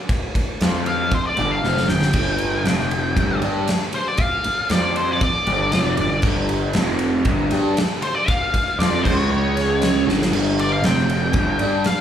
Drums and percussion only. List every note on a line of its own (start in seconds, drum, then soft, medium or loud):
0.09 kick loud
0.09 ride loud
0.35 kick medium
0.35 ride medium
0.61 snare loud
0.61 ride loud
0.86 ride medium
1.11 kick loud
1.11 ride medium
1.37 ride medium
1.64 snare medium
1.77 snare medium
1.89 snare medium
2.02 snare medium
2.13 kick loud
2.13 ride loud
2.13 crash loud
2.38 ride medium
2.65 snare loud
2.65 ride medium
2.80 snare soft
2.91 ride medium
3.17 kick loud
3.17 ride loud
3.42 ride medium
3.68 snare loud
3.68 ride loud
3.93 ride medium
4.17 kick loud
4.17 ride loud
4.44 ride medium
4.70 snare loud
4.70 ride loud
4.96 ride medium
5.21 kick loud
5.21 ride medium
5.47 ride medium
5.72 snare loud
5.72 ride medium
5.97 ride medium
6.22 kick loud
6.22 crash medium
6.49 ride medium
6.73 snare loud
6.73 ride loud
6.99 ride medium
7.25 kick loud
7.25 ride medium
7.51 snare soft
7.51 ride medium
7.77 snare loud
7.77 ride loud
8.02 ride medium
8.28 kick loud
8.28 ride loud
8.54 kick medium
8.54 ride medium
8.80 snare loud
8.80 ride loud
9.05 kick medium
9.05 crash loud
9.57 snare soft
9.57 ride medium
9.82 snare loud
9.82 ride loud
10.09 snare medium
10.22 snare medium
10.33 crash loud
10.59 ride medium
10.84 snare loud
10.84 ride loud
10.98 snare soft
11.10 ride medium
11.33 kick loud
11.33 ride medium
11.59 ride medium
11.84 snare loud
11.84 ride loud